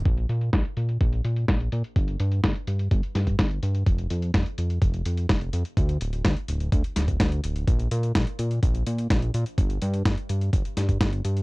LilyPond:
<<
  \new Staff \with { instrumentName = "Analog synth bass" } { \clef bass \time 4/4 \key bes \lydian \tempo 4 = 126 bes,,8 bes,8 bes,,8 bes,8 bes,,8 bes,8 bes,,8 bes,8 | g,,8 g,8 g,,8 g,8 g,,8 g,8 g,,8 g,8 | f,,8 f,8 f,,8 f,8 f,,8 f,8 f,,8 f,8 | d,8 d,,8 d,8 d,,8 d,8 d,,8 d,8 d,,8 |
bes,,8 bes,8 bes,,8 bes,8 bes,,8 bes,8 bes,,8 bes,8 | g,,8 g,8 g,,8 g,8 g,,8 g,8 g,,8 g,8 | }
  \new DrumStaff \with { instrumentName = "Drums" } \drummode { \time 4/4 <hh bd>16 hh16 hh16 hh16 <hh bd sn>16 hh16 hh16 hh16 <hh bd>16 hh16 hh16 hh16 <hh bd sn>16 hh16 hh16 hh16 | <hh bd>16 hh16 hh16 hh16 <hh bd sn>16 hh16 hh16 hh16 <hh bd>16 hh16 <hh sn>16 <hh bd>16 <hh bd sn>16 hh16 hh16 hh16 | <hh bd>16 hh16 hh16 hh16 <hh bd sn>16 hh16 hh16 hh16 <hh bd>16 hh16 hh16 hh16 <hh bd sn>16 hh16 hh16 hh16 | <hh bd>16 hh16 hh16 hh16 <hh bd sn>16 hh16 hh16 hh16 <hh bd>16 hh16 <hh sn>16 <hh bd>16 <hh bd sn>16 hh16 hh16 hh16 |
<hh bd>16 hh16 hh16 hh16 <hh bd sn>16 hh16 hh16 hh16 <hh bd>16 hh16 hh16 hh16 <hh bd sn>16 hh16 hh16 hh16 | <hh bd>16 hh16 hh16 hh16 <hh bd sn>16 hh16 hh16 hh16 <hh bd>16 hh16 <hh sn>16 <hh bd>16 <hh bd sn>16 hh16 hh16 hh16 | }
>>